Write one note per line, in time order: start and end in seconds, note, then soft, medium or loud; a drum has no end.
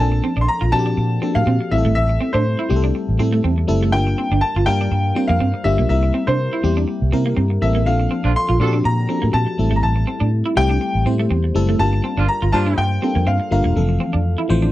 0.00 0.19 A#1 loud
0.00 0.65 F3 medium
0.00 0.66 A#3 medium
0.00 0.66 C4 medium
0.00 0.66 D4 medium
0.00 0.66 A4 medium
0.00 0.43 A5 loud
0.12 muted clean electric guitar stroke soft
0.24 0.33 C4 medium
0.37 0.46 A#1 medium
0.37 0.45 D4 medium
0.41 0.48 C6 medium
0.48 0.74 A#5 loud
0.61 0.71 A#1 loud
0.61 0.69 F4 medium
0.72 0.93 A#2 medium
0.72 1.17 F3 medium
0.72 1.17 A#3 medium
0.72 1.17 C4 medium
0.72 1.17 D4 medium
0.72 0.79 F#4 medium
0.72 1.37 A5 loud
0.72 muted clean electric guitar stroke soft
0.79 1.20 G4 loud
0.86 0.94 D4 medium
0.97 1.18 A#2 medium
0.97 muted clean electric guitar stroke soft
1.22 1.66 F3 medium
1.22 1.66 A#3 medium
1.22 1.31 C4 medium
1.22 1.67 C4 medium
1.22 1.67 D4 medium
1.22 1.67 A4 medium
1.35 1.45 A2 medium
1.35 1.43 A#3 medium
1.35 1.72 F5 loud
1.47 1.58 A#2 loud
1.47 1.56 C4 medium
1.61 muted clean electric guitar stroke soft
1.71 1.87 A1 medium
1.71 2.60 G3 medium
1.71 2.60 A3 medium
1.71 2.61 C4 medium
1.71 2.61 E4 medium
1.71 1.78 G4 medium
1.71 1.94 E5 medium
1.78 2.64 A4 medium
1.85 1.94 G#1 medium
1.85 1.93 A3 medium
1.95 2.17 A1 loud
1.95 2.35 E5 loud
2.09 muted clean electric guitar stroke soft
2.21 2.30 C4 medium
2.33 2.54 A2 medium
2.33 2.42 D4 medium
2.33 2.79 C5 medium
2.59 2.67 E4 medium
2.69 2.91 C2 loud
2.69 3.14 G3 medium
2.69 3.14 A3 medium
2.69 3.14 C4 medium
2.69 3.14 E4 medium
2.69 2.77 G4 medium
2.69 muted clean electric guitar stroke soft
2.76 3.18 A4 medium
2.84 2.91 D4 medium
2.95 muted clean electric guitar stroke soft
3.09 3.18 A1 medium
3.19 3.40 A2 loud
3.19 3.63 G3 medium
3.19 3.64 A3 medium
3.19 3.64 C4 medium
3.19 3.28 C4 medium
3.19 3.64 E4 medium
3.19 3.64 A4 medium
3.32 3.40 A3 medium
3.44 3.64 E2 loud
3.44 3.53 C4 medium
3.58 muted clean electric guitar stroke soft
3.67 3.94 F#1 medium
3.67 3.90 G3 loud
3.67 3.90 A3 medium
3.67 3.90 C4 loud
3.67 3.91 E4 medium
3.67 3.91 A4 loud
3.83 3.90 A3 medium
3.92 4.14 G1 loud
3.92 4.59 G3 medium
3.92 4.60 A#3 medium
3.92 4.60 D4 medium
3.92 4.60 F4 medium
3.92 4.60 A#4 medium
3.92 4.43 G5 loud
4.07 muted clean electric guitar stroke soft
4.18 4.27 C4 medium
4.31 4.41 G1 loud
4.31 4.39 D4 medium
4.41 4.67 A5 loud
4.56 4.65 G1 loud
4.56 4.64 F4 medium
4.66 4.87 G2 loud
4.66 5.11 G3 medium
4.66 5.11 A#3 medium
4.66 5.11 D4 medium
4.66 5.12 F4 medium
4.66 5.12 A#4 loud
4.66 5.31 G5 loud
4.66 muted clean electric guitar stroke soft
4.81 4.89 D4 medium
4.92 5.12 G2 medium
4.92 muted clean electric guitar stroke soft
5.15 5.60 G3 medium
5.15 5.60 A#3 medium
5.15 5.25 C4 medium
5.15 5.60 D4 medium
5.15 5.61 F4 medium
5.15 5.61 C5 medium
5.28 5.39 F2 medium
5.28 5.37 A#3 medium
5.28 5.66 F5 medium
5.40 5.52 G2 loud
5.40 5.50 C4 medium
5.54 muted clean electric guitar stroke soft
5.64 5.76 G1 medium
5.64 5.87 G3 medium
5.64 5.87 A#3 medium
5.64 5.87 D4 medium
5.64 5.88 F4 medium
5.64 5.88 G4 medium
5.64 5.88 E5 medium
5.78 5.88 B1 loud
5.78 5.86 A#3 medium
5.89 6.10 C2 loud
5.89 6.56 G3 medium
5.89 6.56 A#3 medium
5.89 6.56 C4 medium
5.89 6.57 E4 medium
5.89 6.57 A#4 medium
5.89 6.29 E5 medium
6.03 muted clean electric guitar stroke soft
6.14 6.23 C4 medium
6.27 6.48 C3 medium
6.27 6.35 D4 medium
6.27 6.73 C5 medium
6.53 6.60 E4 medium
6.63 6.84 E2 medium
6.63 7.08 G3 medium
6.63 7.08 A#3 medium
6.63 7.08 C4 medium
6.63 7.08 E4 medium
6.63 7.08 G4 loud
6.63 muted clean electric guitar stroke soft
6.77 6.85 D4 medium
6.88 muted clean electric guitar stroke soft
7.02 7.11 C2 medium
7.12 7.33 C3 medium
7.12 7.57 G3 medium
7.12 7.57 A#3 medium
7.12 7.22 C4 medium
7.12 7.57 C4 medium
7.12 7.57 E4 medium
7.12 7.57 A#4 medium
7.26 7.34 A#3 medium
7.37 7.58 G2 loud
7.37 7.46 C4 medium
7.50 muted clean electric guitar stroke soft
7.61 7.86 A1 medium
7.61 7.84 G3 medium
7.61 7.84 A#3 medium
7.61 7.84 C4 medium
7.61 7.84 E4 medium
7.61 7.84 A4 medium
7.61 7.87 E5 medium
7.75 7.83 A#3 medium
7.86 8.07 A#1 loud
7.86 8.53 F3 medium
7.86 8.53 A#3 medium
7.86 8.53 C4 medium
7.86 8.53 D4 medium
7.86 8.53 A4 medium
7.86 8.37 F5 medium
8.00 muted clean electric guitar stroke soft
8.11 8.20 C4 medium
8.24 8.34 A#1 medium
8.24 8.34 F3 medium
8.24 8.34 C4 medium
8.24 8.34 D4 medium
8.24 8.32 D4 medium
8.24 8.34 F4 medium
8.36 8.87 C6 loud
8.49 8.59 A#1 medium
8.49 8.57 F4 medium
8.60 8.81 A#2 loud
8.60 9.05 F3 loud
8.60 8.76 A3 medium
8.60 9.05 A#3 medium
8.60 9.05 C4 medium
8.60 8.76 D4 medium
8.60 9.05 D4 medium
8.60 8.76 F4 medium
8.60 8.67 F#4 medium
8.60 8.76 A4 loud
8.60 muted clean electric guitar stroke soft
8.67 9.08 G4 loud
8.73 8.81 D4 medium
8.84 9.05 A#2 loud
8.84 9.36 A#5 loud
8.84 muted clean electric guitar stroke soft
9.08 9.53 F3 medium
9.08 9.54 A#3 medium
9.08 9.18 C4 medium
9.08 9.54 C4 medium
9.08 9.54 D4 medium
9.08 9.54 A4 medium
9.22 9.32 A2 medium
9.22 9.30 A#3 medium
9.33 9.45 A#2 loud
9.33 9.43 C4 medium
9.33 9.78 A5 loud
9.47 muted clean electric guitar stroke soft
9.58 9.73 A1 medium
9.58 10.47 G3 medium
9.58 10.47 A3 medium
9.58 10.47 C4 medium
9.58 10.48 E4 medium
9.58 10.48 A4 medium
9.71 9.81 G#1 medium
9.71 9.79 A3 medium
9.76 9.83 A#5 medium
9.83 10.03 A1 loud
9.83 10.29 A5 medium
9.96 muted clean electric guitar stroke soft
10.07 10.16 C4 medium
10.20 10.41 A2 medium
10.20 10.28 D4 medium
10.46 10.53 E4 medium
10.56 10.77 C2 loud
10.56 11.01 G3 medium
10.56 11.01 A3 medium
10.56 11.01 C4 medium
10.56 11.01 E4 medium
10.56 11.01 G4 loud
10.56 11.03 G5 loud
10.56 muted clean electric guitar stroke soft
10.70 10.77 D4 medium
10.81 muted clean electric guitar stroke soft
10.95 11.04 A1 loud
11.06 11.26 A2 medium
11.06 11.50 G3 medium
11.06 11.50 A3 medium
11.06 11.15 C4 medium
11.06 11.50 C4 medium
11.06 11.50 E4 medium
11.06 11.51 C5 medium
11.19 11.27 A3 medium
11.31 11.51 E2 loud
11.31 11.40 C4 medium
11.44 muted clean electric guitar stroke soft
11.54 11.75 F#1 loud
11.54 11.77 G3 loud
11.54 11.77 A3 medium
11.54 11.77 C4 medium
11.54 11.77 E4 medium
11.54 11.78 A4 loud
11.69 11.76 A3 medium
11.79 12.00 G1 loud
11.79 12.46 G3 medium
11.79 12.46 A#3 medium
11.79 12.46 D4 medium
11.79 12.46 F4 medium
11.79 12.46 A#4 medium
11.79 12.30 A5 loud
11.93 muted clean electric guitar stroke soft
12.04 12.13 C4 medium
12.16 12.27 G1 loud
12.16 12.27 F3 medium
12.16 12.27 A#3 medium
12.16 12.26 D4 medium
12.16 12.25 D4 medium
12.16 12.27 F4 loud
12.28 12.54 A#5 loud
12.42 12.52 G1 loud
12.42 12.50 F4 medium
12.52 12.73 G2 loud
12.52 12.85 F3 loud
12.52 12.97 G3 medium
12.52 12.97 A#3 medium
12.52 12.85 A#3 loud
12.52 12.98 D4 medium
12.52 12.85 D4 loud
12.52 12.85 F4 loud
12.52 12.98 F4 medium
12.52 12.98 C5 loud
12.52 12.58 A5 loud
12.52 muted clean electric guitar stroke soft
12.66 12.74 D4 medium
12.78 12.98 G2 medium
12.78 13.28 G5 loud
12.78 muted clean electric guitar stroke soft
13.02 13.47 G3 medium
13.02 13.47 A#3 medium
13.02 13.11 C4 medium
13.02 13.47 D4 medium
13.02 13.47 F4 medium
13.02 13.47 A4 medium
13.15 13.25 F2 loud
13.15 13.23 A#3 medium
13.27 13.38 G2 loud
13.27 13.36 C4 medium
13.27 13.50 F5 medium
13.40 muted clean electric guitar stroke soft
13.51 13.62 G1 medium
13.51 13.73 G3 medium
13.51 13.73 A#3 medium
13.51 13.74 D4 medium
13.51 13.74 F4 medium
13.51 13.74 A#4 loud
13.51 14.72 F5 medium
13.64 13.74 E1 medium
13.64 13.72 A#3 medium
13.76 13.96 F1 loud
13.76 14.43 E3 medium
13.76 14.42 F3 medium
13.76 14.43 A3 medium
13.76 14.43 C4 medium
13.76 14.43 A4 medium
13.89 muted clean electric guitar stroke soft
14.00 14.09 C4 medium
14.13 14.34 F2 loud
14.13 14.21 D4 medium
14.38 14.46 E4 medium
14.49 14.70 A1 medium
14.49 14.72 E3 loud
14.49 14.72 F3 loud
14.49 14.72 A3 loud
14.49 14.72 C4 loud
14.49 14.72 C5 loud
14.49 muted clean electric guitar stroke soft
14.62 14.70 D4 medium